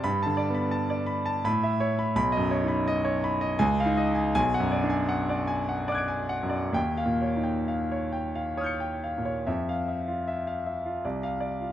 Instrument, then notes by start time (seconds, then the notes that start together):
grand piano
0.04 G2 B5
0.22 D3 A5
0.37 D5
0.50 B3
0.55 B5
0.71 A5
0.90 D5
1.06 B5
1.26 A5
1.45 A2 B5
1.63 E5
1.80 C#5
1.99 B5
2.16 B1 B5
2.32 D#5
2.37 F#2
2.51 C#5
2.64 D#4
2.68 B5
2.88 D#5
3.05 C#5
3.24 B5
3.41 D#5
3.59 C#2 G#5
3.80 F5
3.85 D#4
3.97 D#5
4.15 G#5
4.35 B1 G#5
4.54 F#5
4.60 F#2
4.72 D5
4.83 D4
4.90 G#5
5.09 F#5
5.29 D5
5.47 G#5
5.69 F#5
5.88 D5 D6
5.92 F#6 G#6
5.98 D7
6.08 G#5
6.29 F#5
6.43 F#2
6.50 D5
6.73 D#2 G5
6.97 F5
7.06 A#2
7.22 C#5
7.36 D#4
7.44 G5
7.68 F5
7.91 C#5
8.13 G5
8.35 F5
8.57 C#5 D#6 F6
8.64 G6 C#7
8.80 G5
9.04 F5
9.18 A#2
9.25 C#5
9.47 F2 E5
9.69 F5
9.88 E5
10.08 F4
10.28 E5
10.47 F5
10.66 E5
10.86 F4
11.05 C2 D5
11.23 F5
11.40 D5
11.61 F4